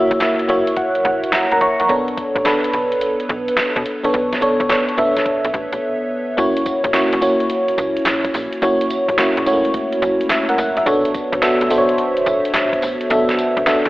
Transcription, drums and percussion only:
0.11 kick, closed hi-hat
0.21 snare, clap, closed hi-hat
0.39 closed hi-hat
0.49 closed hi-hat
0.67 closed hi-hat
0.77 kick, closed hi-hat
0.95 closed hi-hat
1.05 kick, closed hi-hat
1.24 closed hi-hat
1.33 snare, clap, closed hi-hat
1.52 closed hi-hat
1.61 kick, closed hi-hat
1.80 closed hi-hat
1.89 kick, closed hi-hat
2.08 closed hi-hat
2.17 kick, closed hi-hat
2.36 kick, closed hi-hat
2.46 snare, clap, closed hi-hat
2.64 closed hi-hat
2.74 closed hi-hat
2.92 closed hi-hat
3.01 closed hi-hat
3.20 closed hi-hat
3.29 kick, closed hi-hat
3.48 closed hi-hat
3.57 snare, clap, closed hi-hat
3.76 kick, closed hi-hat
3.86 closed hi-hat
4.04 closed hi-hat
4.14 kick, closed hi-hat
4.33 snare, closed hi-hat
4.42 closed hi-hat
4.60 kick, closed hi-hat
4.70 snare, clap, closed hi-hat
4.89 closed hi-hat
4.98 kick, closed hi-hat
5.17 snare, closed hi-hat
5.26 kick, closed hi-hat
5.45 closed hi-hat
5.54 kick, closed hi-hat
5.73 closed hi-hat
6.38 kick, closed hi-hat, tambourine, shaker
6.57 closed hi-hat, shaker
6.66 kick, closed hi-hat, tambourine, shaker
6.84 kick, closed hi-hat, shaker
6.94 snare, clap, closed hi-hat, tambourine, shaker
7.13 closed hi-hat, shaker
7.22 open hi-hat, tambourine, shaker
7.40 closed hi-hat, shaker
7.50 closed hi-hat, shaker
7.68 closed hi-hat, shaker
7.78 kick, closed hi-hat, tambourine, shaker
7.97 closed hi-hat, shaker
8.06 snare, clap, closed hi-hat, tambourine, shaker
8.25 kick, closed hi-hat, shaker
8.34 open hi-hat, tambourine, shaker
8.53 closed hi-hat, shaker
8.62 kick, closed hi-hat, tambourine, shaker
8.81 closed hi-hat, shaker
8.90 closed hi-hat, tambourine, shaker
9.09 kick, closed hi-hat, shaker
9.18 snare, clap, closed hi-hat, tambourine, shaker
9.37 closed hi-hat, shaker
9.46 open hi-hat, tambourine, shaker
9.65 closed hi-hat, shaker
9.74 kick, closed hi-hat, shaker
9.93 closed hi-hat, shaker
10.02 kick, closed hi-hat, tambourine, shaker
10.21 closed hi-hat, shaker
10.30 snare, clap, closed hi-hat, tambourine, shaker
10.49 closed hi-hat, shaker
10.58 kick, open hi-hat, tambourine, shaker
10.77 closed hi-hat, shaker
10.86 kick, closed hi-hat, tambourine, shaker
11.05 closed hi-hat, shaker
11.14 kick, closed hi-hat, tambourine, shaker
11.33 kick, closed hi-hat, shaker
11.42 snare, clap, closed hi-hat, tambourine, shaker
11.61 closed hi-hat, shaker
11.70 open hi-hat, tambourine, shaker
11.89 closed hi-hat, shaker
11.98 closed hi-hat, shaker
12.17 closed hi-hat, shaker
12.26 kick, closed hi-hat, tambourine, shaker
12.45 closed hi-hat, shaker
12.54 snare, clap, closed hi-hat, tambourine, shaker
12.73 kick, closed hi-hat, shaker
12.82 open hi-hat, tambourine, shaker
13.01 closed hi-hat, shaker
13.10 kick, closed hi-hat, tambourine, shaker
13.29 snare, closed hi-hat, shaker
13.38 closed hi-hat, tambourine, shaker
13.57 kick, closed hi-hat, shaker
13.66 snare, clap, closed hi-hat, tambourine, shaker
13.85 closed hi-hat, shaker

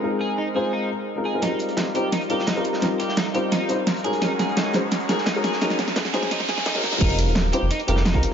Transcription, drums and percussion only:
1.42 snare, closed hi-hat
1.59 closed hi-hat
1.68 closed hi-hat
1.77 snare, closed hi-hat
1.95 closed hi-hat
2.12 snare, closed hi-hat
2.21 closed hi-hat
2.30 closed hi-hat
2.39 snare
2.47 snare, closed hi-hat
2.56 closed hi-hat
2.64 closed hi-hat
2.73 snare
2.82 snare, closed hi-hat
3.00 closed hi-hat
3.09 snare
3.17 snare, closed hi-hat
3.34 closed hi-hat
3.52 snare, closed hi-hat
3.69 closed hi-hat
3.87 snare, closed hi-hat
3.96 closed hi-hat
4.04 closed hi-hat
4.13 closed hi-hat
4.22 snare, closed hi-hat
4.39 snare, closed hi-hat
4.49 closed hi-hat
4.57 snare, closed hi-hat
4.73 snare, closed hi-hat
4.91 snare, closed hi-hat
5.00 closed hi-hat
5.09 snare, closed hi-hat
5.18 snare
5.26 snare, closed hi-hat
5.35 closed hi-hat
5.44 snare, closed hi-hat
5.52 snare
5.61 snare, closed hi-hat
5.70 snare
5.79 snare, closed hi-hat
5.87 snare
5.96 snare, closed hi-hat
6.05 snare
6.13 snare, closed hi-hat
6.23 snare
6.31 snare, closed hi-hat
6.40 snare
6.49 snare, closed hi-hat
6.58 snare
6.66 snare, closed hi-hat
6.75 snare
6.83 snare, closed hi-hat, open hi-hat
6.92 snare
7.01 kick, closed hi-hat, crash
7.10 tambourine
7.18 closed hi-hat, tambourine
7.28 closed hi-hat
7.35 snare, closed hi-hat
7.52 closed hi-hat, tambourine
7.71 closed hi-hat
7.79 closed hi-hat, tambourine
7.88 closed hi-hat, tambourine
7.96 snare
8.05 snare, closed hi-hat
8.14 kick, closed hi-hat
8.23 closed hi-hat, tambourine

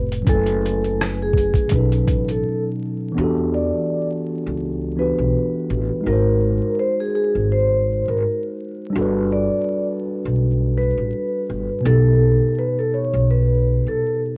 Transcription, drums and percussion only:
0.12 closed hi-hat
0.27 kick, closed hi-hat
0.46 closed hi-hat
0.65 closed hi-hat
0.84 closed hi-hat
1.01 cross-stick, closed hi-hat
1.33 kick
1.38 closed hi-hat
1.54 kick, closed hi-hat
1.69 kick, closed hi-hat
1.92 closed hi-hat
2.08 kick, closed hi-hat
2.28 closed hi-hat

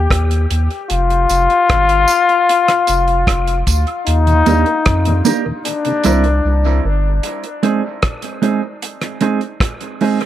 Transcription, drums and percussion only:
0.11 kick, cross-stick, closed hi-hat
0.31 closed hi-hat
0.51 closed hi-hat
0.71 closed hi-hat
0.90 closed hi-hat
1.10 closed hi-hat
1.29 closed hi-hat, tambourine
1.50 closed hi-hat
1.69 kick, cross-stick, closed hi-hat
1.89 closed hi-hat
2.08 closed hi-hat, tambourine
2.29 closed hi-hat
2.49 closed hi-hat
2.68 cross-stick, closed hi-hat
2.87 closed hi-hat, tambourine
3.08 closed hi-hat
3.27 kick, cross-stick, closed hi-hat, high woodblock
3.47 closed hi-hat
3.67 kick, closed hi-hat, tambourine
3.87 closed hi-hat
4.07 closed hi-hat
4.27 closed hi-hat
4.46 closed hi-hat, tambourine
4.66 closed hi-hat
4.86 kick, cross-stick, closed hi-hat
5.05 closed hi-hat
5.25 closed hi-hat, tambourine
5.65 closed hi-hat
5.85 closed hi-hat
6.04 closed hi-hat, tambourine
6.24 closed hi-hat
7.23 closed hi-hat
7.44 closed hi-hat
7.63 closed hi-hat
8.02 kick, cross-stick, closed hi-hat
8.22 closed hi-hat
8.43 closed hi-hat
8.82 closed hi-hat
9.01 cross-stick, closed hi-hat
9.21 closed hi-hat
9.41 closed hi-hat
9.60 kick, cross-stick, closed hi-hat
9.81 closed hi-hat
10.01 open hi-hat
10.21 closed hi-hat

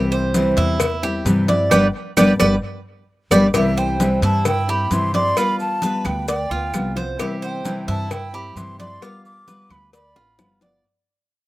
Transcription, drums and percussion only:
0.12 high conga, maracas
0.34 cowbell, high conga, maracas
0.57 cowbell, maracas
0.80 cowbell, high conga, low conga, claves, maracas
1.03 high conga, maracas
1.26 cowbell, high conga, maracas
1.48 cowbell, high conga, maracas
1.71 cowbell, high conga, claves, maracas
2.17 cowbell, high conga, claves, maracas
2.40 cowbell, high conga, claves, maracas
3.31 cowbell, high conga, claves, maracas
3.54 cowbell, high conga, claves, maracas
3.77 high conga, maracas
4.00 cowbell, high conga, maracas
4.22 cowbell, maracas
4.45 cowbell, high conga, low conga, claves, maracas
4.68 high conga, maracas
4.91 cowbell, high conga, maracas
5.14 cowbell, high conga, maracas
5.37 cowbell, high conga, claves, maracas
5.59 high conga, maracas
5.82 cowbell, high conga, maracas
6.05 cowbell, high conga, claves, maracas
6.28 cowbell, high conga, maracas
6.51 high conga, maracas
6.74 cowbell, high conga, claves, maracas
6.97 cowbell, high conga, maracas
7.19 cowbell, claves, maracas
7.43 high conga, maracas
7.65 cowbell, high conga, maracas
7.88 cowbell, maracas
8.11 cowbell, high conga, low conga, claves, maracas
8.34 high conga, maracas
8.57 cowbell, high conga, maracas
8.80 cowbell, high conga, maracas
9.02 cowbell, high conga, claves, maracas
9.25 high conga, maracas
9.48 cowbell, high conga, maracas
9.70 cowbell, high conga, claves, maracas
9.93 cowbell, high conga, maracas
10.16 high bongo, high conga, maracas
10.39 cowbell, low bongo, high conga, claves, maracas
10.61 cowbell, low bongo, high conga, maracas

